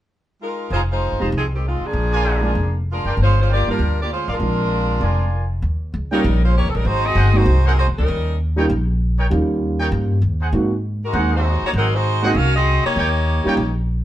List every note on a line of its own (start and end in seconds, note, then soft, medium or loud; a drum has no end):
0.42 0.70 G#3 medium
0.42 0.70 D#4 medium
0.42 0.70 F4 medium
0.42 0.71 A#4 medium
0.70 1.09 F1 medium
0.70 0.81 G#3 medium
0.70 0.82 D#4 medium
0.70 0.84 F4 medium
0.70 0.82 F4 medium
0.70 0.84 C5 medium
0.70 0.81 C5 medium
0.70 0.84 D#5 medium
0.70 0.84 G#5 medium
0.92 1.31 G#3 medium
0.92 1.31 D#4 medium
0.92 1.31 F4 medium
0.92 1.31 C5 medium
1.12 1.21 G#1 soft
1.19 1.32 E1 medium
1.19 1.31 G#3 soft
1.19 1.31 C4 soft
1.19 1.32 D#4 soft
1.19 1.29 F4 medium
1.19 1.32 G4 soft
1.19 1.29 C5 medium
1.19 1.29 D#5 medium
1.19 1.29 A#5 medium
1.32 1.78 C2 medium
1.37 1.45 F3 medium
1.37 1.45 C4 medium
1.37 1.45 D#4 medium
1.37 1.45 G#4 medium
1.55 1.65 D#3 medium
1.55 1.65 G#3 medium
1.55 1.65 C4 medium
1.55 1.65 G4 medium
1.68 1.85 G#3 medium
1.68 1.84 C4 medium
1.68 1.84 D#4 medium
1.68 1.85 F4 medium
1.81 muted upright bass stroke soft
1.86 2.77 F3 medium
1.86 2.77 A#3 medium
1.86 2.77 D4 medium
1.86 2.76 G#4 medium
1.93 2.52 A#1 medium
2.12 2.42 F4 medium
2.12 2.42 A#4 medium
2.12 2.42 D5 medium
2.12 2.42 G#5 medium
2.41 2.54 G#3 medium
2.41 2.54 C4 soft
2.41 2.54 D4 soft
2.41 2.54 F4 medium
2.41 2.52 F4 medium
2.41 2.52 A#4 medium
2.41 2.52 D5 medium
2.41 2.52 G#5 medium
2.55 3.01 F1 medium
2.92 3.19 G#3 medium
2.92 3.18 D4 medium
2.92 3.18 F4 medium
2.92 3.19 A#4 medium
3.04 3.16 F#1 medium
3.04 3.14 F4 medium
3.04 3.14 A#4 medium
3.04 3.14 D5 medium
3.04 3.14 G5 medium
3.17 3.63 G1 medium
3.23 3.38 G#3 medium
3.23 3.37 C#4 medium
3.23 3.38 F4 medium
3.23 3.37 C5 medium
3.42 3.51 G#3 medium
3.42 3.51 C#4 medium
3.42 3.51 F4 medium
3.42 3.51 C5 medium
3.49 3.94 F4 medium
3.49 3.94 A#4 medium
3.49 3.94 D5 medium
3.49 3.94 G5 medium
3.53 3.68 A#3 medium
3.53 3.68 F4 medium
3.53 3.68 G4 medium
3.53 3.68 D5 medium
3.67 3.78 G3 medium
3.67 3.78 A#3 soft
3.67 3.78 D4 soft
3.67 3.97 D4 medium
3.67 3.78 F4 medium
3.67 3.97 F4 medium
3.67 muted upright bass stroke soft
3.71 3.98 G3 medium
3.71 3.98 A#4 medium
3.79 4.25 D2 medium
4.02 4.12 A#3 medium
4.02 4.12 F4 medium
4.02 4.12 G4 medium
4.02 4.12 D5 medium
4.13 4.29 G#3 medium
4.13 4.29 C#4 medium
4.13 4.29 F4 medium
4.13 4.29 C5 medium
4.28 4.39 A1 medium
4.28 4.37 F4 medium
4.28 4.37 A#4 medium
4.28 4.36 D5 medium
4.28 4.37 F5 medium
4.32 5.31 G#3 medium
4.32 5.30 D4 medium
4.32 5.31 F4 medium
4.32 5.31 A#4 medium
4.40 4.98 A#1 medium
4.40 5.25 G#3 soft
4.40 5.25 C4 soft
4.40 5.25 D4 soft
4.40 5.26 F4 soft
5.01 5.59 F1 medium
5.01 5.47 F4 medium
5.01 5.47 A#4 medium
5.01 5.47 D5 medium
5.01 5.47 G#5 medium
5.62 5.91 D#2 medium
5.94 6.22 C#2 medium
6.11 6.23 G3 medium
6.11 6.42 G3 medium
6.11 6.23 A#3 medium
6.11 6.23 C#4 medium
6.11 6.41 C#4 medium
6.11 6.21 D#4 medium
6.11 6.23 D#4 medium
6.11 6.42 D#4 medium
6.11 6.24 F4 medium
6.11 6.21 A#4 medium
6.11 6.41 A#4 medium
6.11 6.21 C#5 medium
6.11 6.20 G5 medium
6.24 6.62 A#1 medium
6.45 6.56 G#3 medium
6.45 6.55 C#4 medium
6.45 6.55 F4 medium
6.45 6.55 C5 medium
6.57 6.69 A#3 medium
6.57 6.69 D#4 medium
6.57 6.69 G4 medium
6.57 6.69 C#5 medium
6.65 6.74 C#2 medium
6.70 6.74 A4 medium
6.75 6.84 A1 medium
6.75 6.87 G3 medium
6.75 6.86 C#4 medium
6.75 6.86 D#4 medium
6.75 6.87 A#4 medium
6.85 7.14 G#1 medium
6.85 7.05 G#3 medium
6.85 7.05 D#4 medium
6.85 7.05 F#4 medium
6.85 7.05 C5 loud
7.06 7.36 C4 medium
7.06 7.35 F#4 medium
7.06 7.35 G#4 medium
7.06 7.36 D#5 loud
7.15 7.44 G1 medium
7.15 7.28 D#4 medium
7.15 7.28 G#4 medium
7.15 7.28 C5 medium
7.15 7.28 F#5 medium
7.32 7.45 G#3 medium
7.32 7.45 A#3 medium
7.32 7.45 C4 medium
7.32 7.45 D#4 medium
7.32 7.46 F#4 medium
7.37 7.67 G#3 medium
7.37 7.67 D#4 medium
7.37 7.66 F#4 medium
7.37 7.67 C5 medium
7.46 7.84 C2 medium
7.65 7.78 F#3 medium
7.65 7.78 C4 medium
7.65 7.73 D#4 medium
7.65 7.78 D#4 medium
7.65 7.73 G#4 medium
7.65 7.78 A#4 medium
7.65 7.73 C5 medium
7.65 7.73 F#5 medium
7.79 7.87 G#3 medium
7.79 7.88 D#4 medium
7.79 7.87 F#4 medium
7.79 7.88 C5 medium
7.87 7.97 D#2 medium
7.98 8.08 C#2 medium
7.98 8.37 G3 medium
7.98 8.37 C#4 medium
7.98 8.38 D#4 medium
7.98 8.37 A#4 medium
8.08 8.66 D#2 medium
8.56 8.68 G3 medium
8.56 8.68 A#3 medium
8.56 8.68 C#4 medium
8.56 8.65 D#4 medium
8.56 8.68 D#4 medium
8.56 8.69 F4 medium
8.56 8.66 A#4 medium
8.56 8.66 C#5 medium
8.56 8.66 G5 medium
8.70 9.27 A#1 medium
9.19 9.27 D#4 medium
9.19 9.27 A#4 medium
9.19 9.27 C#5 medium
9.19 9.27 G5 medium
9.30 9.89 D#2 medium
9.30 10.15 G3 medium
9.30 10.15 A#3 medium
9.30 10.15 C#4 soft
9.30 10.15 D#4 medium
9.30 10.15 F4 medium
9.79 9.88 D#4 medium
9.79 9.88 A#4 medium
9.79 9.88 C#5 medium
9.79 9.87 G5 medium
9.92 10.20 G2 medium
10.22 10.50 D#2 medium
10.41 10.49 D#4 medium
10.41 10.49 G#4 medium
10.41 10.49 C5 medium
10.41 10.49 F#5 medium
10.53 11.10 G#2 medium
10.53 10.69 G#3 medium
10.53 10.69 A#3 medium
10.53 10.70 C4 medium
10.53 10.70 D#4 soft
10.53 10.70 F#4 medium
11.05 11.32 G#3 medium
11.05 11.32 D#4 medium
11.05 11.32 F#4 medium
11.05 11.32 A#4 medium
11.13 11.59 D#2 medium
11.13 11.30 G#3 soft
11.13 11.30 A#3 soft
11.13 11.30 C4 soft
11.13 11.59 D#4 medium
11.13 11.31 D#4 soft
11.13 11.59 G#4 medium
11.13 11.31 G#4 medium
11.13 11.59 C5 medium
11.13 11.59 F#5 medium
11.36 11.65 G#3 medium
11.36 11.65 D#4 medium
11.36 11.65 F#4 medium
11.36 11.64 C5 medium
11.62 11.71 F#4 medium
11.62 muted upright bass stroke soft
11.66 11.71 A#3 medium
11.66 11.71 D#4 medium
11.66 11.71 C#5 medium
11.73 12.32 G#1 medium
11.73 11.87 D#4 medium
11.73 11.87 G#4 medium
11.73 11.87 C5 medium
11.73 11.87 F#5 medium
11.78 11.94 F#3 medium
11.78 11.93 C4 medium
11.78 11.94 D#4 medium
11.78 11.94 A#4 medium
11.95 12.25 G#3 medium
11.95 12.25 D#4 medium
11.95 12.25 F#4 medium
11.95 12.24 C5 medium
12.22 12.34 G#3 medium
12.22 12.34 A#3 medium
12.22 12.34 C4 medium
12.22 12.37 C4 medium
12.22 12.32 D#4 medium
12.22 12.35 D#4 medium
12.22 12.35 F#4 medium
12.22 12.37 F#4 medium
12.22 12.32 G#4 medium
12.22 12.37 G#4 medium
12.22 12.32 C5 medium
12.22 12.37 D#5 medium
12.22 12.32 F#5 medium
12.35 12.81 C2 medium
12.35 12.55 C#4 medium
12.35 12.55 F#4 medium
12.35 12.55 A#4 medium
12.35 12.55 F5 loud
12.56 12.84 C4 medium
12.56 12.84 F#4 medium
12.56 12.84 G#4 medium
12.56 12.84 D#5 medium
12.85 13.73 A#3 medium
12.85 13.73 D#4 medium
12.85 13.73 G4 medium
12.85 13.73 C#5 medium
12.85 muted upright bass stroke soft
12.96 13.42 D#2 medium
12.96 13.10 D#4 medium
12.96 13.10 A#4 medium
12.96 13.10 C#5 medium
12.96 13.10 G5 medium
13.44 13.56 G3 medium
13.44 13.56 A#3 medium
13.44 13.57 C#4 medium
13.44 13.57 D#4 medium
13.44 13.54 D#4 medium
13.44 13.57 F4 medium
13.44 13.54 A#4 medium
13.44 13.54 C#5 medium
13.44 13.54 G5 medium
13.44 muted upright bass stroke soft
13.57 14.04 A#1 medium